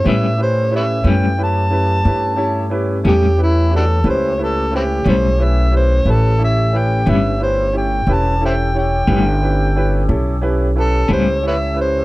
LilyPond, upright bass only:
\new Staff \with { instrumentName = "Upright bass" } { \clef bass \time 12/8 \key a \mixolydian \tempo 4. = 60 a,4. fis,4. g,4. e,4. | cis,4. b,,4. a,,4. g,,4. | e,,4. g,,4. b,,4. cis,4. | }